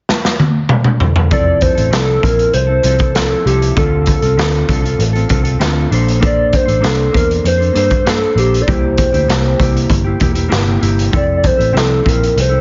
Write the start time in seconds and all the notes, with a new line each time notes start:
0.09 snare
0.25 snare
0.40 high tom
0.69 mid tom
0.84 mid tom
1.00 floor tom
1.16 floor tom
1.31 F1 F3 C4 E4 A4 D5, kick, closed hi-hat
1.61 C5, kick, closed hi-hat
1.75 A1 C4 E4 A4, closed hi-hat
1.91 C2 F3 C4 E4 A4, snare, closed hi-hat
2.21 A#1 F3 C4 E4 A#4, kick, closed hi-hat
2.39 closed hi-hat
2.53 C2 C5, closed hi-hat
2.67 C4 E4 A4
2.83 C2 F3 C4 E4 A4 C5, closed hi-hat
2.99 C4 E4 A4, kick, closed hi-hat
3.15 F3 C4 E4 A4, snare, closed hi-hat
3.45 C2 F3 C4 E4 G4 A4, closed hi-hat
3.62 closed hi-hat
3.75 D2 D3 C4 F4 A4, kick, closed hi-hat
4.06 kick, closed hi-hat
4.22 C2 C4 F4 A4, closed hi-hat
4.37 D2 D3 C4 F4 A4, snare, closed hi-hat
4.53 closed hi-hat
4.68 C2 D3 C4 F4 A4, kick, closed hi-hat
4.82 C4 F4 A4, closed hi-hat
4.99 A1, closed hi-hat
5.13 C4 F4 A4, closed hi-hat
5.28 C2 D3 C4 F4 A4, kick, closed hi-hat
5.43 C4 F4 A4, closed hi-hat
5.59 D2 D3 C4 F4 A4, snare, closed hi-hat
5.90 A#1 A#3 D4 A4 C5, closed hi-hat
6.08 closed hi-hat
6.20 A#3 D4 A4 C5, kick, closed hi-hat
6.25 D5
6.53 C5, kick, closed hi-hat
6.66 A1 D4 A4 C5, closed hi-hat
6.81 C2 A#3 D4 A4 C5, snare, closed hi-hat
6.86 A4
6.98 closed hi-hat
7.11 E2 A#3 D4 C5, kick
7.17 A#4, closed hi-hat
7.31 closed hi-hat
7.44 F2 C5, closed hi-hat
7.57 D4 A4 C5
7.62 closed hi-hat
7.73 G2 A#3 D4 A4 C5, closed hi-hat
7.77 C5
7.90 D4 A4 C5, kick, closed hi-hat
8.05 A#3 D4 A4 C5, snare, closed hi-hat
8.35 A#1 A#3 D4 G4 A4 C5, closed hi-hat
8.54 closed hi-hat
8.62 D5
8.67 C2 C3 A#3 E4 G4 C5, kick, closed hi-hat
8.97 kick, closed hi-hat
9.12 D2 A#3 E4 G4, closed hi-hat
9.28 C2 C3 A#3 E4 G4, snare, closed hi-hat
9.58 C2 C3 A#3 E4, kick, closed hi-hat
9.62 G4
9.77 closed hi-hat
9.89 G1, kick, closed hi-hat
10.04 A#3 E4 G4
10.19 E1 C3 A#3 E4 G4, kick, closed hi-hat
10.34 A#3 E4 G4, closed hi-hat
10.48 G1 C3 A#3 E4 G4, snare, closed hi-hat
10.79 G1 C3 A#3 E4 G4, closed hi-hat
10.99 closed hi-hat
11.11 F1 F3 C4 E4 A4, kick, closed hi-hat
11.16 D5
11.37 D5
11.44 C5, kick, closed hi-hat
11.57 A1 C4 E4 A4, closed hi-hat
11.72 C2 F3 C4 E4 A4
11.77 A4, snare, closed hi-hat
12.04 A#1 F3 C4 E4, kick
12.08 A#4, closed hi-hat
12.23 closed hi-hat
12.36 C2, closed hi-hat
12.40 C5
12.49 C4 E4 A4